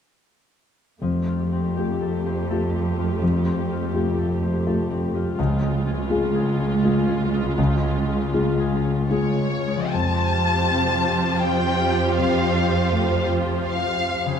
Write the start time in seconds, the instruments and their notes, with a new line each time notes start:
1.01 cello section F2, grand piano F2, harp F3, viola section A3 G4
1.27 harp F4
1.52 harp C4
1.77 grand piano A3 F4 G4, harp G4
2.02 harp A4
2.26 harp C5
2.50 grand piano A3 F4 G4, harp A4
2.74 harp C4
2.98 harp F4
3.22 grand piano F2, harp F3
3.46 harp C4
3.71 harp F4
3.94 grand piano A3 F4 G4, harp G4
4.18 harp A4
4.43 harp C5
4.67 grand piano A3 F4 G4, harp A4
4.90 harp C4
5.15 harp F4
5.38 cello section C#2, grand piano C#2, harp C#3, viola section G#3 F4
5.62 harp G#3
5.87 harp C#4
6.10 grand piano G#3 F4 G#4, harp F4
6.35 harp G#4
6.59 harp C#5
6.84 grand piano G#3 F4 G#4, harp G#4
7.08 harp C#4
7.34 harp G#3
7.58 grand piano C#2, harp C#3
7.83 harp C#4
8.09 harp G#3
8.34 grand piano G#3 F4 G#4, harp F4
8.59 harp G#4
8.85 harp C#5
9.10 grand piano G#3 F4 G#4, harp G#4, violin section C#5
9.38 harp C#4
9.67 harp G#3
9.76 harp F3
9.80 harp C4
9.85 harp G4
9.89 cello section F2, viola section F3 F4, violin section G4 C5 A5, harp A4
9.94 grand piano F2
10.71 grand piano C3
11.43 violin section G5
12.18 grand piano F2, violin section F5
12.92 grand piano A3
13.67 violin section F5
14.26 harp C#3
14.30 harp C#4
14.35 harp F4